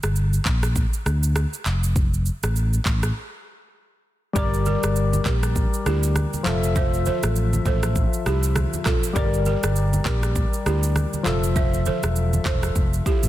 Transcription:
0.03 G1, cross-stick, shaker
0.16 shaker
0.33 shaker
0.45 A#1, kick, clap, shaker
0.63 cross-stick, shaker
0.76 kick, shaker
0.93 shaker
1.06 D2, cross-stick, shaker
1.23 shaker
1.36 cross-stick, shaker
1.53 shaker
1.66 F1, clap, shaker
1.84 shaker
1.96 kick, shaker
2.14 shaker
2.26 shaker
2.43 A1, cross-stick, shaker
2.56 shaker
2.73 shaker
2.85 A1, kick, clap, shaker
3.03 cross-stick, shaker
4.33 G1 G3 G4 A#4 D5, kick, low conga, shaker
4.38 D5
4.54 shaker
4.66 G4 A#4, high conga, shaker
4.83 G1, cross-stick, shaker
4.96 shaker
5.13 high conga, shaker
5.25 A#1 G4 A#4, kick, clap, low conga, shaker
5.43 cross-stick, shaker
5.56 kick, shaker
5.73 shaker
5.86 D2 E4 G4, cross-stick, shaker
6.03 shaker
6.16 cross-stick, high conga, shaker
6.33 high conga, shaker
6.43 F1 F3 F4 A4, clap, low conga, shaker
6.48 E5
6.64 shaker
6.76 C5 E5, kick, low conga, shaker
6.94 shaker
7.05 A4 C5, high conga, shaker
7.23 A1, cross-stick, shaker
7.36 shaker
7.53 high conga, shaker
7.66 A1 A4 C5, kick, low conga, shaker
7.83 cross-stick, shaker
7.96 kick, shaker
8.13 shaker
8.26 C2 E4 G4, cross-stick, shaker
8.43 shaker
8.56 cross-stick, high conga, shaker
8.73 high conga, shaker
8.86 F4 A4, kick, cross-stick, clap, low conga, shaker
9.03 shaker
9.13 G1 G3 G4 A#4 D5, kick, low conga, shaker
9.18 D5
9.34 shaker
9.45 G4 A#4, high conga, shaker
9.63 G1, cross-stick, shaker
9.76 shaker
9.93 high conga, shaker
10.05 A#1 G4 A#4, kick, clap, low conga, shaker
10.23 cross-stick, shaker
10.36 kick, shaker
10.53 shaker
10.66 D2 E4 G4, cross-stick, shaker
10.83 shaker
10.96 cross-stick, high conga, shaker
11.13 high conga, shaker
11.23 F1 F3 F4 A4, clap, low conga, shaker
11.28 E5
11.44 shaker
11.56 C5 E5, kick, low conga, shaker
11.74 shaker
11.86 A4 C5, high conga, shaker
12.03 E1, cross-stick, shaker
12.16 shaker
12.33 high conga, shaker
12.45 E1 A4 C5, kick, clap, low conga, shaker
12.63 cross-stick, shaker
12.76 F1, kick, shaker
12.93 shaker
13.06 E4 G4, kick, shaker
13.23 A1, shaker

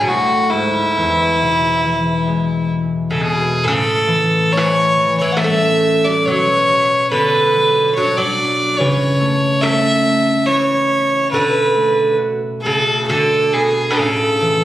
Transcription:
Already playing: D2 D3 F#3
0.01 B2 G#4
0.08 A2 F#4
0.50 G#2 E4
0.97 E2
1.42 B2
1.85 E3
2.27 G#3
3.11 C#3 A4
3.20 B2 G#4
3.64 A2 C#3 A4
4.08 E3
4.52 A3 C#5
4.57 E3
4.97 E3
5.18 E3 C#5
5.32 F#5
5.37 A3 E5
5.41 A3 C#4
6.04 F#3 D5
6.26 B2 F#3 C#5
6.69 F#3
7.11 D3 B3 B4
7.56 F#3
7.95 F#3 D4 C#5
8.17 F#3 D5
8.78 C#3 E3 C#5
9.20 A3
9.61 A3 C#4 E5
10.05 A3
10.46 E3 E4 C#5
11.31 B2 D3 B4
11.75 A3
12.19 F#4
12.62 C#3 A3 A4
13.07 D3 F#4 A4
13.53 B2 G#4
13.90 D3 B4
13.97 A2 C#3 A4
14.41 E3

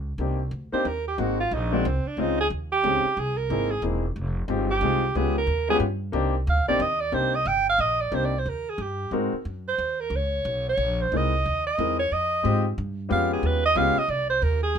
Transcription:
Already playing: C#2
0.18 C2 A#3 C4 D4 D#4 G4
0.51 D2
0.72 A#3 C4 D4 D#4 G4 C5, muted upright bass stroke
0.85 D#2 A#4
1.08 G4
1.18 G#1 G#3 A#3 C4 D#4 F#4
1.40 F4
1.51 A#1 D#4
1.72 G#3 A#3 C4 D4 D#4 F#4
1.85 C2 C4
2.05 D4, muted upright bass stroke
2.17 C#2 G#3 C4 C#4 D#4 F4
2.40 G#4
2.50 D#2
2.72 G4
2.83 C#2 G#3 C4 C#4 D#4 G#4
3.05 muted upright bass stroke
3.17 C2 G#4
3.37 A#4
3.50 G#1 A#3 C4 D#4 E4 G#4
3.71 G#4
3.82 E1 A#3 C4 D#4 E4 G#4
4.16 F1
4.48 G1 G#3 C4 D#4 F4 G4
4.71 G4
4.81 C2 G#3 C4 D#4 F4 G#4
5.15 C#2 G#3 B3 C#4 F4 G4 G#4
5.38 A#4
5.47 D#2
5.69 G#3 B3 C#4 F4 G4 G#4
5.80 G2
6.12 C2 A#3 C4 D4 D#4 G4
6.47 D2 F5
6.57 C2
6.68 A#1 A#3 C4 D4 D#4 G4 D5
6.80 D#2 D#5
7.00 D5
7.12 C2 A#3 C4 D4 D#4 G4 C5
7.35 D#5
7.45 G1 G5
7.69 F5
7.79 A#1 D#5
8.01 D5
8.11 C2 A#3 C4 D4 D#4 G4 C5
8.25 D5
8.39 C5
8.46 D#2 A#4
8.69 G#4
8.78 G2
8.82 G4
9.11 G#2 G#3 C4 D#4 F#4 A#4
9.33 muted upright bass stroke
9.45 F#2
9.68 C5
9.78 D#2
10.00 A#4
10.10 C#2
10.16 C#5
10.45 B1
10.69 C#5
10.77 A#1
11.02 C5
11.12 C2 G#3 C4 D#4 E4 A#4
11.17 D#5
11.46 D#2
11.67 D#5
11.78 E2 G#3 C4 D#4 E4 A#4
11.99 C#5
12.12 F2 D#5
12.43 G#2 G#3 C4 D#4 F4 G4
12.78 G2
13.09 F2 G#3 B3 C#4 F4 G4 F5
13.33 G#4
13.43 D#2 B4
13.65 D#5
13.75 C#2 G#3 B3 C#4 F4 G4 F5
13.97 D#5, muted upright bass stroke
14.08 C2 D5
14.30 C5
14.42 D#2 A#4
14.63 G#4
14.75 A#1

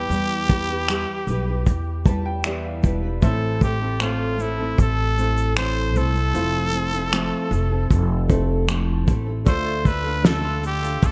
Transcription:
Already playing: G3 B3 E4 G4 B4
0.09 E2 E3 G3 E4 G4 B4, shaker
0.48 G3 E4 G4 B4, kick, shaker
0.68 E4 G4 B4
0.89 E3 G3 E4 G4 B4, finger snap, shaker
1.27 B1 G3 E4 G4 B4, shaker
1.47 E4 G4 B4
1.66 E2, kick, shaker
2.04 G3 E4 G4 B4 A5, kick, shaker
2.26 G5
2.44 E3 G3 B3 E4 G4 B4 D5 E5, finger snap, shaker
2.65 F5
2.83 E1 G3 E4 G4 B4, kick, shaker
3.02 E4 G4 B4
3.20 A1 A2 E3 A3 C4 E4 A4 C5 E5, kick, shaker
3.61 A3 C4 E4 G4 A4, kick, shaker
3.80 A3 C4 E4 A4
3.99 A2 A3 C4 F4 A4, finger snap, shaker
4.37 A3 C4 E4 A4, shaker
4.41 E4
4.57 A3 C4 E4 A4
4.78 A1 A4, kick, shaker
5.17 A3 C4 E4 A4, shaker
5.38 shaker
5.56 A2 E3 A3 C4 E4 A4 C5, finger snap, shaker
5.94 C2 A3 C4 E4 A4 C5, shaker
6.14 A3 C4 E4 A4, shaker
6.31 F1 F3 A3 C4 E4 F4 A4 C5, shaker
6.72 A3 C4 E4 A4, shaker
6.92 C4 E4 A4, shaker
7.12 F3 A3 C4 E4 A4, finger snap, shaker
7.51 F1 A3 C4 E4 A4, shaker
7.70 C4 E4 A4
7.90 F1, kick, shaker
8.28 A3 C4 E4 A4, kick, shaker
8.67 F3 A3 C4 E4 A4, finger snap, shaker
9.06 A1 A3 C4 E4 A4, kick, shaker
9.26 C4 E4 A4
9.44 D2 D3 A3 D4 F4 A4 C5, kick, shaker
9.49 D5
9.65 F4
9.84 A3 D4 F4 A4 B4, kick, shaker
10.03 D4 F4 A4 F5
10.22 D3 A3 D4 F4 A4, snare, shaker
10.44 F4
10.62 A3 D4 F4 A4, shaker
10.66 G4
10.82 D4 F4 A4, shaker
11.02 D2 A3 A4, kick, shaker

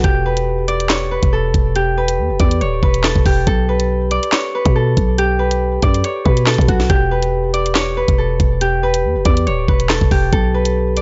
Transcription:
Already playing: A4 B4 C#5
0.04 E1 G4, kick, closed hi-hat
0.26 B4
0.37 closed hi-hat
0.68 D5, closed hi-hat
0.80 closed hi-hat
0.89 C#5, snare, clap, closed hi-hat
1.11 B4
1.23 E1, kick, closed hi-hat
1.33 A4
1.54 E1, kick, closed hi-hat
1.76 G4, closed hi-hat
1.98 B4
2.08 closed hi-hat
2.18 E2
2.30 E1
2.40 E2 D5, kick, closed hi-hat
2.51 closed hi-hat
2.61 D1 C#5, closed hi-hat
2.83 E1 B4, kick
2.94 closed hi-hat
3.04 A4, snare, clap, closed hi-hat
3.16 E1, kick
3.26 E1 G4, kick, open hi-hat
3.47 B1 A4, kick, closed hi-hat
3.69 B4
3.80 closed hi-hat
4.11 D5, closed hi-hat
4.23 closed hi-hat
4.32 C#5, snare, clap, closed hi-hat
4.55 B4
4.65 B2, kick, closed hi-hat
4.76 A4
4.97 B1, kick, closed hi-hat
5.18 G4, closed hi-hat
5.39 B4
5.51 closed hi-hat
5.82 F#2 D5, kick, closed hi-hat
5.94 closed hi-hat
6.04 C#5, closed hi-hat
6.25 B2 B4, kick
6.37 closed hi-hat
6.46 A4, snare, clap, closed hi-hat
6.54 closed hi-hat
6.58 B2, kick, closed hi-hat
6.68 B1 F#4, kick, closed hi-hat
6.80 snare
6.90 E1 G4, kick, closed hi-hat
7.11 B4
7.23 closed hi-hat
7.54 D5, closed hi-hat
7.66 closed hi-hat
7.75 C#5, snare, clap, closed hi-hat
7.97 B4
8.08 E1, kick, closed hi-hat
8.18 A4
8.40 E1, kick, closed hi-hat
8.61 G4, closed hi-hat
8.83 B4
8.94 closed hi-hat
9.04 E2
9.15 E1
9.25 E2 D5, kick, closed hi-hat
9.37 closed hi-hat
9.47 D1 C#5, closed hi-hat
9.68 E1 B4, kick
9.80 closed hi-hat
9.89 A4, snare, clap, closed hi-hat
10.01 E1, kick
10.11 E1 G4, kick, open hi-hat
10.33 B1 A4, kick, closed hi-hat
10.54 B4
10.65 closed hi-hat
10.97 D5, closed hi-hat

